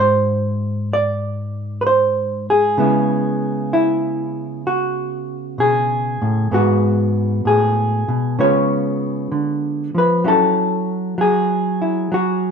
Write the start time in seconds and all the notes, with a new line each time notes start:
Already playing: G#2 G#3 E4 F#4
0.00 C5
0.93 D5
1.81 B4
1.87 C5
2.50 G#4
2.78 C#3 G#3 B3 E4
3.73 E4
4.67 F#4
5.58 B2 G#4
6.22 A2
6.51 G#2 G#3 B3 F#4
7.45 A2 G#4
8.08 B2
8.39 C#3 G#3 B3 F4 C#5
9.32 D3
9.95 F3 B4
10.24 F#3 C#4 E4 A4
11.18 F#3 G#4
11.82 E4
12.12 F#3 F#4